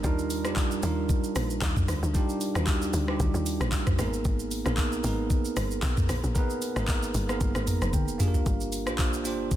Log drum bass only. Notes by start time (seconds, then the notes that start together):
0.04 D#2
0.45 F2
0.83 D#2
1.36 A#1
1.62 D#2
1.88 D2
2.03 D2
2.55 D#2
2.93 D2
3.20 D2
3.34 D#2
3.60 A#1
3.99 G#1
4.25 G#1
4.66 A#1
5.04 G#1
5.57 G1
5.83 B1
6.09 A#1
6.24 A#1
6.76 G#1
7.14 G1
7.41 G1
7.55 G#1
7.82 F1
8.20 G1
8.46 G1
8.87 A#1
9.25 G1